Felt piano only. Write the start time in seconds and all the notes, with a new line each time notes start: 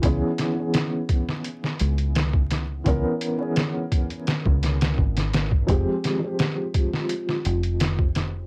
0.02 E3 B3 C#4 G#4
0.54 E3 B3
0.59 C#4 G#4
2.84 E3 B3 C#4 A#4
3.38 E3 B3 C#4
3.42 G#4
5.67 F3 G#3 C4 G4
6.19 F3 G#3
6.24 C4 G4